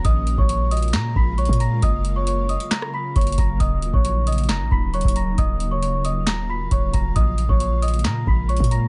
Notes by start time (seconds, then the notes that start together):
Already playing: A#3
0.05 A#1 C#3 G#3 F4 D#5 D#6, kick, closed hi-hat
0.27 closed hi-hat
0.38 A#1 C#5 C#6, kick
0.49 C#5 C#6, closed hi-hat
0.71 D#5 D#6, closed hi-hat
0.77 closed hi-hat
0.82 closed hi-hat
0.88 closed hi-hat
0.93 A#2 A#5 A#6, snare, clap, closed hi-hat
1.16 A#1 B5 B6, kick
1.38 C#5 C#6, closed hi-hat
1.45 A#2, kick, closed hi-hat
1.53 closed hi-hat
1.60 A#5 A#6, closed hi-hat
1.82 F#1 F#3 D#5 D#6, kick, closed hi-hat
2.05 closed hi-hat
2.16 C#5 C#6
2.27 C#5 C#6, closed hi-hat
2.49 D#5 D#6, closed hi-hat
2.60 closed hi-hat
2.71 A#5 A#6, snare, clap, closed hi-hat
2.82 cross-stick
2.94 B5 B6
3.16 F#1 C#5 C#6, kick, closed hi-hat
3.21 closed hi-hat
3.27 closed hi-hat
3.32 closed hi-hat
3.38 F#1 A#5 A#6, kick, closed hi-hat
3.60 D#1 D#4 D#5 D#6, kick, closed hi-hat
3.82 closed hi-hat
3.93 A#1 C#5 C#6, kick
4.05 C#5 C#6, closed hi-hat
4.27 D#5 D#6, closed hi-hat
4.32 closed hi-hat
4.38 closed hi-hat
4.44 closed hi-hat
4.49 F1 A#5 A#6, snare, clap, closed hi-hat
4.60 A#1
4.71 D#1 B5 B6, kick
4.94 C#5 C#6, closed hi-hat
5.01 D#1, kick, closed hi-hat
5.08 closed hi-hat
5.16 A#5 A#6, closed hi-hat
5.38 D#1 F4 D#5 D#6, kick, closed hi-hat
5.60 closed hi-hat
5.71 C#5 C#6
5.82 C#5 C#6, closed hi-hat
6.05 D#5 D#6, closed hi-hat
6.27 A#5 A#6, snare, clap, closed hi-hat
6.50 B5 B6
6.71 D#1 C#5 C#6, kick, closed hi-hat
6.94 D#1 A#5 A#6, kick, closed hi-hat
7.16 A#1 G#3 A#3 D#5 D#6, kick, closed hi-hat
7.38 closed hi-hat
7.49 A#1 C#5 C#6, kick
7.60 C#5 C#6, closed hi-hat
7.82 D#5 D#6, closed hi-hat
7.88 closed hi-hat
7.94 closed hi-hat
7.99 closed hi-hat
8.05 A#2 A#5 A#6, snare, clap, closed hi-hat
8.27 A#1 B5 B6, kick
8.49 C#5 C#6, closed hi-hat
8.57 A#2, kick, closed hi-hat
8.64 closed hi-hat
8.71 A#5 A#6, closed hi-hat